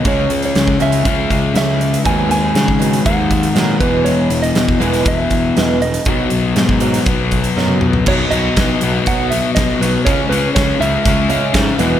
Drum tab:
CC |----------------|----------------|----------------|----------------|
HH |x-xxx-xxx-x-x-xx|x-x-x-xxx-xxx-x-|x-xxx-xxx-x-x-xx|x-x-x-xxx-xx----|
SD |----o-------o---|----o-------o---|----o--o----o---|----o--o----o---|
T1 |----------------|----------------|----------------|-------------o--|
T2 |----------------|----------------|----------------|--------------o-|
FT |----------------|----------------|----------------|---------------o|
BD |o----o--o-o-----|o----o--o-o---o-|-----o--o-o-----|o----o--o-o-----|

CC |x---------------|----------------|
HH |--x-x-x-x-x-x-x-|x-x-x-x-x-x-x-x-|
SD |----o-------o-o-|----o-------o-o-|
T1 |----------------|----------------|
T2 |----------------|----------------|
FT |----------------|----------------|
BD |o---o---o---o---|o---o---o---o---|